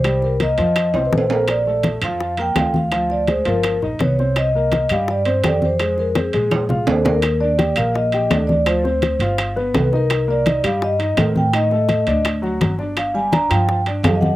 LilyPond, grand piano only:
\new Staff \with { instrumentName = "Grand piano" } { \time 4/4 \key c \minor \tempo 4 = 167 <g g'>4 <bes bes'>8 <f f'>4 <c' c''>8 <a a'>8 <bes bes'>8~ | <bes bes'>8 <a a'>4 <f f'>4 <bes bes'>8 <f' f''>4 | <f f'>4 <aes aes'>8 <f f'>4 <dis' dis''>8 <b b'>8 <c' c''>8~ | <c' c''>8 <bes bes'>4 <g g'>4 <c' c''>8 <g' g''>4 |
<aes aes'>4 <c' c''>8 <aes aes'>4 <f' f''>8 <d' d''>8 <d' d''>8 | \key ees \major r8 <d' d''>8 <g' g''>8 <bes bes'>4 <g' g''>8 <d' d''>4 | <f f'>8 <c' c''>4 <f' f''>4 <b b'>4 <ees' ees''>8~ | <ees' ees''>8 <bes bes'>8 <ees' ees''>8 <g g'>4 <ees' ees''>8 <c' bes'>4 |
<ees ees'>8 <a a'>4 <d' d''>4 <fis fis'>4 <d' d''>8~ | <d' d''>8 <g g'>8 <d' d''>8 <f f'>4 <d' d''>8 <f g'>4 | }